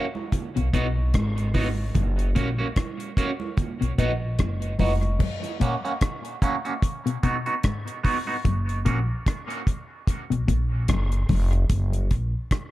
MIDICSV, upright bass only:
0, 0, Header, 1, 2, 480
1, 0, Start_track
1, 0, Key_signature, 6, "major"
1, 0, Tempo, 811908
1, 1154, Time_signature, 4, 2, 24, 8
1, 7515, End_track
2, 0, Start_track
2, 0, Title_t, "Upright bass"
2, 0, Program_c, 0, 32
2, 337, Note_on_c, 0, 35, 91
2, 428, Note_off_c, 0, 35, 0
2, 438, Note_on_c, 0, 35, 97
2, 657, Note_off_c, 0, 35, 0
2, 678, Note_on_c, 0, 32, 98
2, 1133, Note_off_c, 0, 32, 0
2, 1159, Note_on_c, 0, 30, 95
2, 1378, Note_off_c, 0, 30, 0
2, 2257, Note_on_c, 0, 35, 90
2, 2349, Note_off_c, 0, 35, 0
2, 2360, Note_on_c, 0, 34, 85
2, 2579, Note_off_c, 0, 34, 0
2, 2599, Note_on_c, 0, 30, 90
2, 2818, Note_off_c, 0, 30, 0
2, 2838, Note_on_c, 0, 29, 80
2, 3057, Note_off_c, 0, 29, 0
2, 5000, Note_on_c, 0, 30, 95
2, 5218, Note_off_c, 0, 30, 0
2, 5244, Note_on_c, 0, 34, 97
2, 5366, Note_off_c, 0, 34, 0
2, 6099, Note_on_c, 0, 35, 95
2, 6190, Note_off_c, 0, 35, 0
2, 6200, Note_on_c, 0, 34, 85
2, 6418, Note_off_c, 0, 34, 0
2, 6441, Note_on_c, 0, 30, 97
2, 6659, Note_off_c, 0, 30, 0
2, 6679, Note_on_c, 0, 29, 94
2, 6897, Note_off_c, 0, 29, 0
2, 6919, Note_on_c, 0, 30, 102
2, 7137, Note_off_c, 0, 30, 0
2, 7162, Note_on_c, 0, 34, 102
2, 7285, Note_off_c, 0, 34, 0
2, 7515, End_track
0, 0, End_of_file